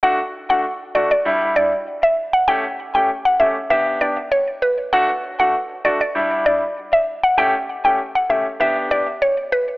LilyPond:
<<
  \new Staff \with { instrumentName = "Synth pluck" } { \time 4/4 \key d \major \tempo 4 = 98 fis''16 r8 fis''16 r8 d''16 d''16 r8 d''16 r8 e''16 r16 fis''16 | g''16 r8 g''16 r16 fis''16 e''16 r16 e''16 r16 d''16 r16 cis''16 r16 b'16 r16 | fis''16 r8 fis''16 r8 d''16 d''16 r8 d''16 r8 e''16 r16 fis''16 | g''16 r8 g''16 r16 fis''16 e''16 r16 e''16 r16 d''16 r16 cis''16 r16 b'16 r16 | }
  \new Staff \with { instrumentName = "Grand piano" } { \time 4/4 \key d \major <a d' fis'>16 r8 <a d' fis'>16 r8 <a d' fis'>16 r16 <g d' e'>8 <g d' e'>16 r4 r16 | <a cis' g'>16 r8 <a cis' g'>16 r8 <a cis' g'>16 r16 <b d' g'>8 <b d' g'>16 r4 r16 | <a d' fis'>16 r8 <a d' fis'>16 r8 <a d' fis'>16 r16 <g d' e'>8 <g d' e'>16 r4 r16 | <a cis' g'>16 r8 <a cis' g'>16 r8 <a cis' g'>16 r16 <b d' g'>8 <b d' g'>16 r4 r16 | }
>>